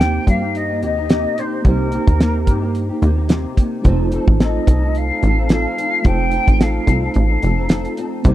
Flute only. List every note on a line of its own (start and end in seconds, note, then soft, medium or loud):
0.00 0.28 G5 loud
0.28 0.58 F5 medium
0.57 0.83 D#5 medium
0.84 1.41 D#5 medium
1.39 1.69 C5 medium
1.67 2.76 A#4 medium
4.43 4.99 D#5 medium
4.97 5.51 F5 medium
5.52 6.07 F5 loud
6.06 6.63 G5 loud
6.62 7.16 F5 medium
7.17 7.95 F5 medium